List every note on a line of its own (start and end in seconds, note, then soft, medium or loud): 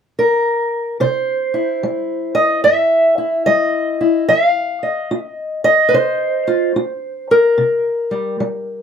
0.19 0.97 A#4 medium
1.00 1.77 C3 medium
1.00 2.34 C5 medium
1.54 3.17 E4 soft
1.83 2.59 G3 medium
2.35 2.63 D#5 medium
2.64 3.41 G2 medium
2.64 3.46 E5 loud
3.18 4.00 E4 soft
3.46 4.24 G3 medium
3.46 4.28 D#5 medium
4.01 4.30 E4 soft
4.29 5.06 F3 medium
4.29 5.26 F5 loud
4.83 5.26 D#5 soft
5.11 5.88 F4 medium
5.26 5.63 D#5 loud
5.64 6.71 D#5 loud
5.89 5.94 B4 medium
5.93 6.70 C3 medium
5.93 7.59 C5 medium
6.47 6.75 F4 medium
6.76 7.52 F4 medium
7.31 8.82 A#4 medium
7.58 8.34 C3 medium
8.11 8.40 G3 soft
8.40 8.82 G3 medium